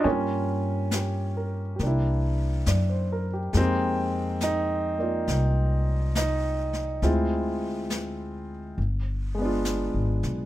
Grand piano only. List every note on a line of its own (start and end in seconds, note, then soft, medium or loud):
0.04 1.79 G3 soft
0.04 1.78 A#3 soft
0.04 0.06 C#4 medium
0.04 1.80 C#4 soft
0.94 1.62 G4 soft
1.37 1.97 A#4 soft
1.76 3.53 A#3 soft
1.76 3.32 G4 soft
1.83 3.55 D4 soft
1.83 3.57 E4 soft
2.68 3.08 D5 soft
2.89 3.26 C5 soft
3.12 3.38 A#4 soft
3.33 3.57 G4 soft
3.53 7.02 G#3 soft
3.53 4.97 A#3 soft
3.53 4.38 C4 medium
3.53 4.42 D#4 soft
3.58 7.05 G4 medium
4.43 4.97 D#4 medium
4.99 7.02 A#3 soft
4.99 7.02 F4 soft
4.99 7.03 D5 soft
6.17 7.06 D#4 medium
7.03 8.78 G#3 soft
7.03 8.78 C4 soft
7.03 8.78 E4 soft
7.03 8.78 F4 medium
9.35 10.46 G#3 soft
9.35 10.46 B3 soft
9.42 10.46 D4 soft
9.42 10.46 F4 medium